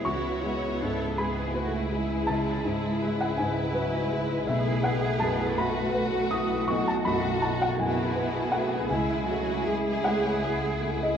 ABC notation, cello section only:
X:1
M:6/8
L:1/8
Q:3/8=54
K:C#m
V:1 name="Cello section"
F E A G F E- | E6 | G3 F3- | F6 |
E F G4 |]